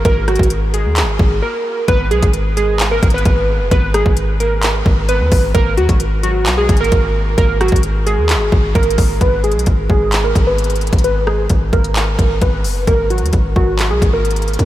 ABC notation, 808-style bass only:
X:1
M:4/4
L:1/16
Q:1/4=131
K:G#m
V:1 name="808-style bass" clef=bass
G,,,3 G,,,4 D,,3/2 G,,,3/2 G,,,2 z4 | G,,,2 B,,, G,,,6- G,,, G,,,2 G,,,3 F,,, | G,,,3 G,,,6- G,,, G,,,3 D,, G,,,2 | G,,,2 D,, G,,,4- G,,, B,,,2 G,,,2 G,,,4 |
G,,,3 G,,,4 D,,3/2 G,,,3/2 G,,,2 G,,,2 G,,,2 | G,,,3 B,,, G,,,2 G,,,4 G,,,4- G,,, G,,,- | G,,,4 G,,,2 G,,,4 G,,,2 G,,,2 F,,,2 | G,,,3 D,, G,,,2 G,,,3 B,,, G,,,4- G,,, D,, |]